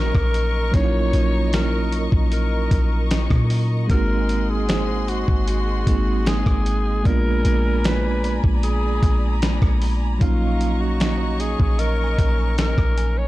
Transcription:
0.00 0.12 A#1 loud
0.00 0.68 F#3 medium
0.00 0.69 A#3 medium
0.00 0.70 C#4 medium
0.00 0.71 D#4 medium
0.00 0.76 A#4 loud
0.00 3.86 A#4 medium
0.00 7.01 D#5 medium
0.00 0.72 F5 medium
0.00 3.86 A#5 medium
0.00 3.86 C#6 medium
0.15 0.71 A#1 loud
0.15 kick loud
0.15 cross-stick medium
0.34 closed hi-hat medium
0.71 1.12 A#1 loud
0.71 3.84 F#3 medium
0.71 3.85 A#3 medium
0.71 3.86 C#4 medium
0.71 1.97 C#5 medium
0.71 1.53 C#5 loud
0.71 kick loud
0.71 closed hi-hat medium
0.76 3.87 D#4 medium
0.76 0.82 E4 medium
0.84 3.91 F4 medium
1.13 2.08 A#1 loud
1.13 closed hi-hat medium
1.53 2.02 A#4 loud
1.53 snare loud
1.53 closed hi-hat medium
1.92 closed hi-hat medium
2.12 2.69 A#1 loud
2.12 kick loud
2.32 3.07 A#4 medium
2.32 closed hi-hat medium
2.71 3.28 A#1 loud
2.71 kick medium
2.71 closed hi-hat medium
3.11 snare loud
3.11 closed hi-hat medium
3.30 3.87 A#2 loud
3.30 kick medium
3.30 cross-stick medium
3.50 open hi-hat medium
3.87 5.24 G#1 loud
3.87 5.82 G#3 medium
3.87 5.83 A#3 medium
3.87 5.83 C4 medium
3.87 7.02 G#4 medium
3.87 4.52 A#4 loud
3.87 7.02 F#5 medium
3.87 7.02 C6 medium
3.87 kick loud
3.87 closed hi-hat medium
3.92 5.84 D#4 medium
3.92 5.85 F#4 medium
4.29 closed hi-hat medium
4.50 5.11 G#4 medium
4.69 5.92 C5 medium
4.69 snare loud
4.69 closed hi-hat medium
5.08 5.48 F#4 medium
5.08 closed hi-hat medium
5.28 5.85 G#1 loud
5.28 kick loud
5.47 6.29 F#4 medium
5.47 closed hi-hat medium
5.86 6.44 G#1 loud
5.86 7.02 G#3 medium
5.86 7.03 A#3 soft
5.86 7.06 C4 soft
5.86 7.06 D#4 soft
5.86 7.07 G#4 medium
5.86 kick medium
5.86 closed hi-hat medium
6.26 7.08 G#4 loud
6.26 snare loud
6.26 closed hi-hat medium
6.46 7.03 G#1 loud
6.46 kick medium
6.46 cross-stick medium
6.66 closed hi-hat medium
7.03 7.43 A#1 loud
7.03 10.16 G#3 medium
7.03 10.17 A#3 medium
7.03 10.17 B3 medium
7.03 7.87 A#4 loud
7.03 8.28 D5 medium
7.03 10.18 D5 medium
7.03 10.18 G#5 medium
7.03 13.28 A#5 medium
7.03 10.18 B5 medium
7.03 kick loud
7.03 closed hi-hat medium
7.08 10.18 D4 medium
7.08 10.19 F4 medium
7.45 8.40 A#1 loud
7.45 closed hi-hat medium
7.84 8.37 B4 loud
7.84 snare loud
7.84 closed hi-hat medium
8.24 closed hi-hat medium
8.44 9.00 A#1 loud
8.44 kick medium
8.63 9.39 G#4 medium
8.63 closed hi-hat medium
9.03 9.60 A#1 loud
9.03 kick medium
9.03 closed hi-hat medium
9.42 snare loud
9.42 closed hi-hat medium
9.62 10.19 A#1 loud
9.62 kick medium
9.62 cross-stick medium
9.82 open hi-hat medium
10.19 11.55 A#1 loud
10.19 13.28 F#3 medium
10.19 13.28 A#3 medium
10.19 13.28 C#4 medium
10.19 10.82 F4 medium
10.19 13.28 C#5 medium
10.19 13.28 D#5 medium
10.19 13.28 C#6 medium
10.19 kick loud
10.19 closed hi-hat medium
10.23 13.28 D#4 medium
10.23 13.28 F5 medium
10.61 closed hi-hat medium
10.81 11.42 F#4 medium
11.00 snare loud
11.00 closed hi-hat medium
11.40 11.81 G#4 medium
11.40 closed hi-hat medium
11.60 12.16 A#1 loud
11.60 kick loud
11.79 12.58 A#4 loud
11.79 13.02 D#5 medium
11.79 closed hi-hat medium
12.04 12.96 G#5 medium
12.18 12.75 A#1 loud
12.18 kick medium
12.18 closed hi-hat medium
12.28 13.28 A#5 medium
12.58 13.19 A#4 loud
12.58 snare loud
12.58 closed hi-hat medium
12.78 13.28 A#1 loud
12.78 kick loud
12.78 cross-stick medium
12.97 13.28 G#5 medium
12.97 closed hi-hat medium
13.18 13.28 C#5 loud

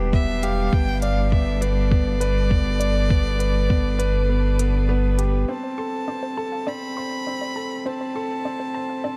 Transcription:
0.00 0.70 E1 medium
0.00 0.73 C3 medium
0.00 5.49 G3 medium
0.00 0.13 B3 medium
0.00 7.14 D4 medium
0.00 1.56 E4 medium
0.00 0.43 G4 loud
0.00 0.75 B4 medium
0.13 0.42 B3 medium
0.13 0.44 E5 loud
0.13 kick loud
0.43 0.60 G4 medium
0.43 0.75 F5 loud
0.43 closed hi-hat medium
0.73 5.45 G1 medium
0.73 1.01 B3 medium
0.73 1.01 G5 loud
0.73 kick loud
1.02 1.31 D5 medium
1.02 1.30 F5 medium
1.02 closed hi-hat medium
1.31 1.60 B3 medium
1.31 1.62 E5 medium
1.31 kick medium
1.41 6.83 A4 medium
1.61 1.79 B4 medium
1.61 4.88 D5 loud
1.61 closed hi-hat medium
1.91 2.20 B3 medium
1.91 kick loud
2.21 2.38 B4 loud
2.21 closed hi-hat medium
2.43 7.39 B4 medium
2.50 2.79 B3 medium
2.50 kick medium
2.80 3.08 D5 medium
2.80 closed hi-hat medium
3.09 3.38 B3 medium
3.09 kick medium
3.39 3.57 B4 medium
3.39 closed hi-hat medium
3.69 3.98 B3 medium
3.69 kick medium
3.99 4.16 B4 loud
3.99 closed hi-hat medium
4.29 4.58 B3 medium
4.59 4.87 B3 medium
4.59 closed hi-hat medium
4.89 5.17 B3 loud
5.19 5.47 G4 medium
5.19 closed hi-hat medium
5.48 9.17 D3 medium
5.48 5.77 C4 medium
5.48 5.57 C5 medium
5.48 6.70 A5 medium
5.63 5.76 C5 medium
5.78 5.95 A4 medium
5.78 5.83 C6 medium
6.06 9.17 A3 medium
6.06 6.36 C4 medium
6.06 6.16 D5 medium
6.13 9.17 F4 medium
6.23 6.31 C5 medium
6.28 9.17 E4 medium
6.37 6.54 A4 medium
6.37 6.50 A5 medium
6.52 6.60 F5 medium
6.67 6.95 C4 medium
6.67 6.75 D5 loud
6.67 7.88 B5 medium
6.97 7.25 C5 medium
6.97 7.02 C6 medium
7.11 7.16 A5 medium
7.27 7.55 C4 medium
7.27 7.35 D5 medium
7.41 7.46 D5 medium
7.56 7.73 A4 medium
7.56 7.68 A5 medium
7.71 7.76 A5 medium
7.86 8.14 C4 medium
7.86 7.94 C5 medium
7.86 9.17 A5 medium
8.01 8.13 C5 medium
8.15 8.32 A4 medium
8.15 8.21 C6 loud
8.45 8.74 C4 medium
8.45 8.53 D5 medium
8.60 8.68 C5 medium
8.75 9.03 C5 medium
8.75 8.87 A5 medium
8.89 8.98 F5 medium
9.04 9.17 C4 medium
9.04 9.13 D5 medium

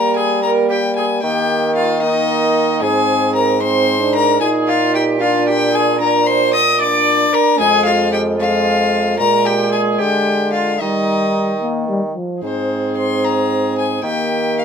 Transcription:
0.00 1.19 G3 medium
0.00 0.39 A#3 medium
0.00 0.18 A#4 medium
0.00 0.15 A#5 medium
0.16 0.42 G#4 medium
0.16 0.42 G#5 medium
0.43 1.21 A#3 medium
0.43 0.69 A#4 medium
0.43 0.51 A#5 medium
0.70 0.78 G4 medium
0.70 0.95 G5 medium
0.96 1.05 G#4 medium
0.96 1.22 G#5 medium
1.22 2.84 D#3 medium
1.22 2.02 A#3 medium
1.22 1.75 G4 medium
1.22 1.75 G5 medium
1.76 2.03 F4 medium
1.76 2.02 F5 medium
2.02 2.81 A#3 medium
2.02 2.84 D#4 medium
2.02 2.81 D#5 medium
2.82 4.41 G#2 medium
2.82 3.60 C4 medium
2.82 3.35 G#4 medium
2.82 3.34 G#5 loud
3.35 3.61 A#4 medium
3.35 3.61 A#5 medium
3.62 4.03 C4 medium
3.62 4.17 C5 medium
3.62 4.14 C6 loud
4.01 4.40 D4 medium
4.15 4.41 A#4 medium
4.15 4.40 A#5 loud
4.41 7.28 A#2 medium
4.41 5.19 D#4 medium
4.41 4.70 G#4 medium
4.41 4.49 G#5 medium
4.68 4.96 F4 medium
4.68 4.94 F5 medium
4.94 5.22 G4 medium
4.94 5.03 G5 medium
5.20 5.98 D4 medium
5.20 5.49 F4 medium
5.20 5.47 F5 medium
5.47 5.73 G4 medium
5.47 5.76 G5 loud
5.73 5.99 G#4 medium
5.73 6.00 G#5 loud
5.99 6.51 D4 medium
5.99 6.26 A#4 medium
5.99 6.28 A#5 medium
6.26 6.55 C5 medium
6.26 6.53 C6 loud
6.53 6.81 D#5 medium
6.53 6.79 D#6 loud
6.79 7.61 D4 medium
6.79 7.34 D5 loud
6.79 7.35 D6 loud
7.33 7.59 A#4 medium
7.33 7.59 A#5 loud
7.59 9.16 F2 medium
7.59 8.38 G#3 medium
7.59 7.88 G#4 medium
7.59 7.84 G#5 loud
7.85 8.12 F4 medium
7.85 8.12 F5 medium
8.13 8.21 G4 medium
8.13 8.21 G5 medium
8.39 9.18 G#3 medium
8.39 9.18 F4 medium
8.39 9.18 F5 loud
9.19 10.02 A#2 medium
9.19 10.76 G#3 medium
9.19 9.47 A#4 medium
9.19 9.48 A#5 loud
9.45 9.72 G4 medium
9.45 9.72 G5 medium
9.72 10.01 G#4 medium
9.72 9.80 G#5 medium
9.99 10.81 D3 medium
9.99 10.53 G4 medium
9.99 10.52 G5 medium
10.53 10.80 F4 medium
10.53 10.81 F5 medium
10.80 12.13 D#3 medium
10.80 11.55 G3 medium
10.80 11.60 D#4 medium
10.80 11.61 D#5 medium
11.62 11.87 A#3 medium
11.89 12.01 G3 medium
12.15 12.42 F3 medium
12.42 14.00 G#2 medium
12.42 14.00 C4 medium
12.42 14.05 G#4 medium
12.42 12.93 C5 medium
12.97 13.26 C6 medium
13.24 13.77 A#5 medium
13.78 14.03 G#5 medium
14.03 14.65 D#3 medium
14.03 14.65 A#3 medium
14.03 14.65 G4 medium
14.03 14.56 G5 medium
14.59 14.65 F5 medium

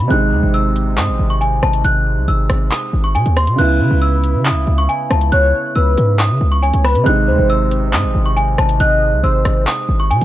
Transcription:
0.08 0.34 G#1 loud
0.08 3.53 C3 medium
0.08 3.54 G#3 medium
0.08 0.51 F#6 loud
0.08 closed hi-hat medium
0.13 3.56 D#4 medium
0.32 0.43 D#2 loud
0.43 0.99 G#1 loud
0.54 0.95 E6 medium
0.76 closed hi-hat medium
0.97 1.10 G#2 loud
0.97 1.28 D#6 medium
0.97 clap loud
0.97 closed hi-hat medium
1.08 1.19 G#1 loud
1.19 1.61 G#1 loud
1.30 1.40 C#6 medium
1.41 1.61 G#5 medium
1.41 closed hi-hat medium
1.63 1.84 G#1 loud
1.63 1.83 A5 medium
1.63 cross-stick medium
1.63 closed hi-hat medium
1.73 closed hi-hat medium
1.84 2.19 G#1 loud
1.84 2.25 F#6 loud
1.84 closed hi-hat medium
2.17 2.27 C2 loud
2.28 2.49 G#1 loud
2.28 2.69 E6 medium
2.50 2.71 G#1 loud
2.50 cross-stick loud
2.50 closed hi-hat medium
2.71 3.02 D#6 medium
2.71 clap loud
2.71 closed hi-hat medium
2.93 3.16 G#1 loud
3.04 3.14 C#6 medium
3.15 3.25 C3 loud
3.15 3.35 G#5 medium
3.15 closed hi-hat medium
3.26 3.49 D#2 loud
3.26 closed hi-hat medium
3.37 3.57 C6 medium
3.37 cross-stick loud
3.37 open hi-hat medium
3.47 3.58 C3 medium
3.47 closed hi-hat medium
3.56 3.82 C#2 loud
3.56 7.01 C#3 medium
3.56 7.02 B3 medium
3.56 3.99 F#6 loud
3.56 closed hi-hat medium
3.56 crash loud
3.61 7.04 E4 medium
3.80 3.90 C#3 loud
3.80 4.42 B4 medium
3.91 4.36 C#2 loud
4.02 4.43 E6 medium
4.24 closed hi-hat medium
4.34 4.52 C#3 loud
4.45 4.76 D#6 medium
4.45 clap loud
4.45 closed hi-hat medium
4.51 4.66 C#2 loud
4.67 4.88 C#2 loud
4.78 4.88 C#6 medium
4.89 5.09 G#5 medium
4.89 closed hi-hat medium
5.10 5.31 C#2 loud
5.10 5.31 A5 medium
5.10 cross-stick medium
5.10 closed hi-hat medium
5.21 closed hi-hat medium
5.32 5.53 C#2 loud
5.32 5.73 C#5 loud
5.32 5.73 F#6 loud
5.32 closed hi-hat medium
5.76 5.97 C#2 loud
5.76 6.17 B4 medium
5.76 6.17 E6 medium
5.97 6.32 G#2 loud
5.97 closed hi-hat medium
6.19 6.50 D#6 medium
6.19 clap loud
6.19 closed hi-hat medium
6.30 6.40 C#3 loud
6.41 6.72 C#2 loud
6.52 6.62 C#6 medium
6.62 6.83 C#5 medium
6.62 6.83 G#5 medium
6.62 closed hi-hat medium
6.74 6.97 C#2 loud
6.74 closed hi-hat medium
6.84 7.05 B4 medium
6.84 7.04 B5 medium
6.84 cross-stick medium
6.84 open hi-hat medium
6.95 7.06 C#3 loud
6.95 closed hi-hat medium
7.04 7.29 G#1 loud
7.04 10.25 C3 medium
7.04 10.25 G#3 medium
7.04 7.47 F#6 loud
7.04 closed hi-hat medium
7.09 10.25 D#4 medium
7.28 7.38 D#2 loud
7.28 7.89 C5 medium
7.39 7.95 G#1 loud
7.50 7.91 E6 medium
7.71 closed hi-hat medium
7.93 8.05 G#2 loud
7.93 8.24 D#6 medium
7.93 clap loud
7.93 closed hi-hat medium
8.04 8.14 G#1 loud
8.15 8.57 G#1 loud
8.26 8.36 C#6 medium
8.37 8.57 G#5 medium
8.37 closed hi-hat medium
8.58 8.79 G#1 loud
8.58 8.78 A5 medium
8.58 cross-stick loud
8.58 closed hi-hat medium
8.69 closed hi-hat medium
8.80 9.14 G#1 loud
8.80 9.21 D#5 loud
8.80 9.21 F#6 loud
8.80 closed hi-hat medium
9.13 9.23 C2 loud
9.23 9.44 G#1 loud
9.23 9.64 C5 medium
9.23 9.65 E6 medium
9.45 9.66 G#1 loud
9.45 cross-stick loud
9.45 closed hi-hat medium
9.67 9.98 D#6 medium
9.67 clap loud
9.67 closed hi-hat medium
9.89 10.12 G#1 loud
10.00 10.10 C#6 medium
10.11 10.21 C3 loud
10.11 10.25 G#5 medium
10.11 closed hi-hat medium
10.21 10.25 D#2 loud
10.21 closed hi-hat medium

